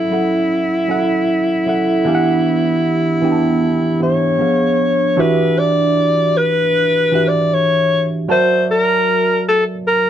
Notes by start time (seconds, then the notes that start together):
Already playing: F#3 C#4 E4 A4 F#5
0.10 F#3 C#4 E4 A4 F#5
0.88 F#3 C#4 E4 A4 F#5
1.66 F#3 C#4 E4 A4 F#5
2.05 E3 B3 D4 G4 F5
2.15 F#5
3.22 E3 B3 D4 G4 G5
3.32 A5
4.00 E3 B3 D4 G4 C#5 E5
4.38 F3 B3 D4 G#4 F5
5.16 E3 D4 F#4 G4 B4 E5
5.59 D5
6.37 B4
7.12 E3 D4 F#4 G4 E5
7.28 D5
7.54 C#5
8.28 F#3 F#4 A#4 C5 D5 E5 A5
8.71 A#4
9.48 A4
9.87 A#4